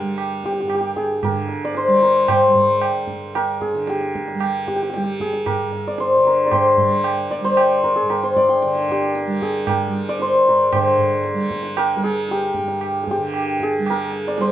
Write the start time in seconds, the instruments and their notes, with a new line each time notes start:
Already playing: tanpura G2 D3, santur G4 A#4 C5
0.00 tanpura G3
0.18 tabla na
0.44 santur G4, tabla ke
0.53 santur G4
0.60 tanpura G2, santur G4
0.68 santur G4, tabla na
0.74 santur G4
0.81 santur G4
0.96 santur G#4, tabla ke
1.23 tanpura D3, santur A#4, tabla na, tabla ge
1.49 tabla te
1.65 santur D5
1.75 santur C5, tabla te
1.87 tanpura G3
2.02 santur A#4, tabla te
2.28 santur C5, tabla na, tabla ge
2.47 tanpura G3
2.55 tabla ge
2.81 tabla na
3.08 tanpura G2, tabla ke
3.35 santur A#4, tabla na
3.61 santur G#4, tabla ke
3.73 tanpura D3, tabla te
3.87 santur G4, tabla te
4.01 tabla te
4.15 tabla ke
4.28 tabla te
4.33 tanpura G3
4.40 tabla na
4.68 santur G4, tabla ke
4.76 santur G4
4.83 santur G4
4.90 santur G4
4.94 tanpura G3, santur G4, tabla te
5.04 santur G4, tabla te
5.20 santur G#4, tabla ke
5.33 tabla te
5.46 santur A#4, tabla na, tabla ge
5.56 tanpura G2
5.72 tabla te
5.88 santur D5
5.98 santur C5, tabla te
6.17 tanpura D3
6.25 santur A#4, tabla te
6.46 santur D5
6.51 santur C5, tabla na, tabla ge
6.77 tanpura G3, tabla ge
7.04 tabla na
7.30 santur D5, tabla ke
7.40 tanpura G3
7.44 santur C5
7.57 tabla na
7.84 santur A#4, tabla ke
7.96 santur G#4, tabla te
8.02 tanpura G2
8.10 santur A#4, tabla na
8.23 santur C5
8.37 santur D5, tabla ke
8.49 santur G5
8.62 tanpura D3, tabla te
8.75 tabla te
8.89 santur G4, tabla ke
9.02 tabla te
9.15 tabla te
9.26 tanpura G3, tabla te
9.42 santur G#4, tabla ke
9.54 tabla te
9.67 santur A#4, tabla na, tabla ge
9.87 tanpura G3
9.93 tabla te
10.09 santur D5
10.20 santur C5, tabla te
10.46 tanpura G2, santur A#4, tabla te
10.72 tanpura D3, santur C5, tabla na, tabla ge
10.98 tabla ge
11.24 tabla te
11.33 tanpura G3, tabla te
11.51 tabla ke
11.63 tabla te
11.77 santur A#4, tabla na
11.95 tanpura G3, santur A#4
12.03 santur G#4, tabla te
12.29 santur G4, tabla te
12.42 tabla te
12.55 tanpura G2, tabla ke
12.68 tabla te
12.81 tabla na
13.03 santur G#4
13.08 santur G4, tabla ke
13.18 tanpura D3
13.34 tabla na
13.60 santur G#4, tabla ke
13.78 tanpura G3
13.86 santur A#4, tabla na
14.12 tabla te
14.28 santur D5
14.38 tanpura G3, santur C5, tabla te